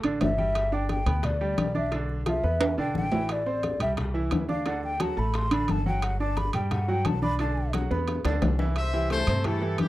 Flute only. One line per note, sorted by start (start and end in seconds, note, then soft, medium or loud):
0.23 0.75 E5 loud
0.74 0.90 G5 medium
0.90 1.26 G5 medium
1.24 1.77 D5 medium
1.76 1.93 E5 medium
2.28 2.75 E5 medium
2.79 2.94 G5 medium
2.97 3.33 G5 loud
3.31 3.81 D5 medium
3.82 3.92 E5 medium
4.50 4.68 F5 medium
4.67 4.83 F#5 medium
4.84 5.03 G5 loud
5.01 5.20 A5 medium
5.19 5.38 B5 medium
5.36 5.54 C6 loud
5.52 5.72 B5 loud
5.71 5.87 A5 loud
5.87 6.05 G5 medium
6.04 6.19 F#5 medium
6.20 6.39 A5 medium
6.37 6.54 B5 medium
6.54 6.73 G5 medium
6.72 6.91 F#5 medium
6.89 7.08 G5 loud
7.06 7.22 A5 loud
7.22 7.38 B5 loud
7.40 7.72 A5 medium